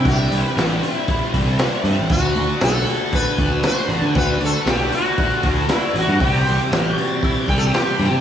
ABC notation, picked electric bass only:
X:1
M:4/4
L:1/16
Q:1/4=117
K:Dmix
V:1 name="Picked electric bass" clef=bass
C,,2 C,, z A,,,2 z4 C,,2 z2 G,, A,,, | D,,2 D,, z B,,,2 z4 D,,2 z2 A,,, D, | D,,2 D,, z B,,,2 z4 D,,2 z2 A,,, G,, | C,,2 C,, z A,,,2 z4 C,,2 z2 G,, C, |]